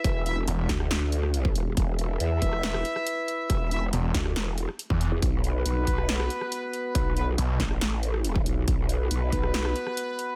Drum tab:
HH |x-x-x-x-x-x-x-x-|x-x-x-x-x-x-x-x-|x-x-x-x-x-x-x-x-|x-x-x-x-x-x-x-x-|
SD |------oro--r----|-------ror-r----|------oro--r----|-------ror-r----|
BD |o-----o------o--|o-----o---------|o-----o------o--|o-----o---------|

HH |x-x-x-x-x-x-x-x-|x-x-x-x-x-x-x-x-|
SD |------oro--r----|-------ror-r----|
BD |o-----o------o--|o-----o---------|